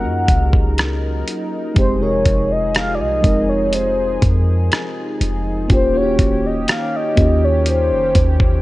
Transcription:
Already playing: analog synth pad F#3 D#4 A#4, fm electric piano A#3 C#4 D#4 F4 G4 G#4, soft synth lead F#5
0.04 808-style bass F#2
0.29 808-style bass C#2, kick, closed hi-hat
0.53 kick
0.78 cross-stick, closed hi-hat
1.27 closed hi-hat
1.74 808-style bass F1, analog synth pad F3 G#4, fm electric piano G#3 C4 D#4 G4, soft synth lead C5, kick, closed hi-hat
1.99 fm electric piano C3 G#3 D#4 A#4, soft synth lead C#5
2.25 808-style bass F1, kick, closed hi-hat
2.52 soft synth lead D#5
2.75 soft synth lead F5, cross-stick, closed hi-hat
2.95 soft synth lead D5
2.99 808-style bass C2, soft synth lead D#5
3.22 808-style bass F1, fm electric piano G#3 C4 D#4 A#4, kick, closed hi-hat
3.49 soft synth lead C#5
3.73 soft synth lead C5, closed hi-hat
4.22 808-style bass F2, kick, closed hi-hat
4.72 cross-stick, closed hi-hat
5.21 808-style bass F1, closed hi-hat
5.68 808-style bass D#1, analog synth pad D#3 C#4 G4, fm electric piano A#3 C#4 F4, kick, closed hi-hat
5.72 fm electric piano G4, soft synth lead C5
5.93 fm electric piano A#3 C#4 F4 F#4
5.97 soft synth lead C#5
6.03 fm electric piano G4
6.19 808-style bass D#1, kick, closed hi-hat
6.46 soft synth lead D#5
6.68 soft synth lead F5, cross-stick, closed hi-hat
6.96 soft synth lead D#5
7.15 808-style bass D#2, fm electric piano A#3 C#4 F4, kick, closed hi-hat
7.19 fm electric piano G4
7.44 soft synth lead C#5
7.66 soft synth lead C5, closed hi-hat
7.91 808-style bass F1
8.15 808-style bass D#2, kick, closed hi-hat
8.40 kick

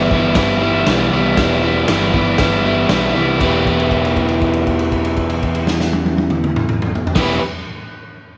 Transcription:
Already playing: picked electric bass G1, overdriven electric guitar E3 G3 B3 E4
0.11 overdriven electric guitar E3 G3 B3 E4, kick
0.35 picked electric bass G1, overdriven electric guitar E3 G3 B3 E4, kick, snare, open hi-hat
0.62 overdriven electric guitar E3 G3 B3 E4
0.87 picked electric bass B1, overdriven electric guitar E3 G3 B3 E4, snare, open hi-hat
1.12 picked electric bass C2, overdriven electric guitar E3 G3 B3 E4
1.37 picked electric bass E1, overdriven electric guitar E3 G3 B3 E4, kick, snare, open hi-hat
1.62 overdriven electric guitar E3 G3 B3 E4
1.88 picked electric bass G1, overdriven electric guitar E3 G3 B3 E4, snare, open hi-hat
2.14 overdriven electric guitar E3 G3 B3 E4, kick
2.38 picked electric bass G1, overdriven electric guitar E3 G3 B3 E4, kick, snare, open hi-hat
2.64 overdriven electric guitar E3 G3 B3 E4
2.89 picked electric bass B1, overdriven electric guitar E3 G3 B3 E4, snare, open hi-hat
3.14 picked electric bass C2, overdriven electric guitar E3 G3 B3 E4
3.39 picked electric bass E1, overdriven electric guitar E3 B3 E4 G4, kick, crash
3.44 overdriven electric guitar B4
3.66 kick, crash
3.80 crash
3.91 kick, crash
4.05 crash
4.17 kick, crash
4.29 crash
4.42 kick, crash
4.53 crash
4.67 kick, crash
4.79 crash
4.92 kick, crash
5.05 crash
5.17 kick, crash
5.29 crash
5.43 kick, crash
5.55 crash
5.67 snare
5.80 snare
5.93 high tom
6.06 high tom
6.18 high tom
6.30 mid tom
6.44 mid tom
6.56 mid tom
6.69 mid tom
6.82 mid tom
6.95 floor tom
7.07 floor tom
7.15 picked electric bass E1, overdriven electric guitar E3 B3 E4 G4, kick, snare, crash
7.20 overdriven electric guitar B4

